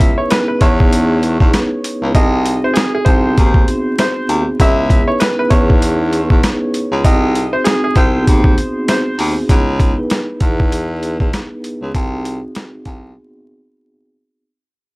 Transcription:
Already playing: C#2 B3 C#4 E4 G#4 E5
0.00 kick, closed hi-hat
0.15 B3 D#4 E4 B4 C#5
0.31 B4, snare, closed hi-hat
0.48 B4
0.61 E2 C#5, kick, closed hi-hat
0.78 B3 D#4 E4 G#4, kick
0.93 closed hi-hat
1.23 closed hi-hat
1.40 E2, kick
1.53 snare, closed hi-hat
1.84 closed hi-hat
2.02 C#2
2.13 C2 C4 D#4 F#4 G#4 D#5, kick, closed hi-hat
2.46 closed hi-hat
2.62 C4 D#4 F#4 G#4 C5
2.74 G#4, snare, closed hi-hat
2.95 G#4
3.05 C2 C5, kick, closed hi-hat
3.25 B3 D#4 F#4 G#4
3.32 C4
3.38 D#2, kick, closed hi-hat
3.54 kick
3.68 closed hi-hat
3.99 C5, snare, closed hi-hat
4.29 D#2, closed hi-hat
4.57 C#2 B3 C#4 E4 G#4, kick, closed hi-hat
4.61 E5
4.90 kick, closed hi-hat
5.05 B3 D#4 E4 B4 C#5
5.20 B4, snare, closed hi-hat
5.39 B4
5.50 E2 C#5, kick, closed hi-hat
5.68 B3 D#4 E4 G#4, kick
5.82 closed hi-hat
6.13 closed hi-hat
6.30 E2, kick
6.43 snare, closed hi-hat
6.74 closed hi-hat
6.91 C#2
7.03 C2 C4 D#4 F#4 G#4 D#5, kick, closed hi-hat
7.35 closed hi-hat
7.52 C4 D#4 F#4 G#4 C5
7.64 G#4, snare, closed hi-hat
7.84 G#4
7.96 C2 C5, kick, closed hi-hat
8.15 B3 D#4 F#4 G#4
8.21 C4
8.27 D#2, kick, closed hi-hat
8.44 kick
8.58 closed hi-hat
8.88 C5, snare, closed hi-hat
9.19 D#2, open hi-hat
9.47 C#2 B3 D#4 E4 G#4, kick, closed hi-hat
9.80 kick, closed hi-hat
9.95 B3 D#4 E4 B4
10.10 snare, closed hi-hat
10.40 E2, kick, closed hi-hat
10.58 B3 D#4 E4, kick
10.72 closed hi-hat
11.03 closed hi-hat
11.20 E2, kick
11.33 snare, closed hi-hat
11.64 closed hi-hat
11.82 C#2
11.93 C2 C4 D#4 F#4 G#4, kick, closed hi-hat
12.25 closed hi-hat
12.42 C4 D#4 F#4 G#4
12.55 snare, closed hi-hat
12.85 C2, kick, closed hi-hat
13.05 B3 D#4 F#4 G#4
13.11 C4

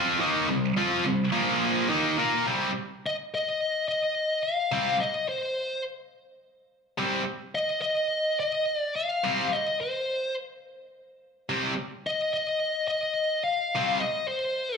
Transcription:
Already playing: F3 C4 F4
0.20 D#3 A#3 D#4
0.48 C3 G3
0.77 F3 C4 F4
1.05 C3 G3
1.32 A#2 F3 A#3
1.89 D#3 A#3 D#4
2.18 A#3 F4 A#4
2.46 C3 G3 C4
3.07 D#5
3.35 D#5
3.88 D#5
4.43 F5
4.72 C3 G3 C4
5.00 D#5
5.29 C5
6.98 C3 G3 C4
7.55 D#5
7.82 D#5
8.40 D#5
8.78 D5
8.96 F5
9.24 C3 G3 C4
9.52 D#5
9.81 C5
11.49 C3 G3 C4
12.07 D#5
12.33 D#5
12.88 D#5
13.44 F5
13.76 C3 G3 C4
14.00 D#5
14.28 C5

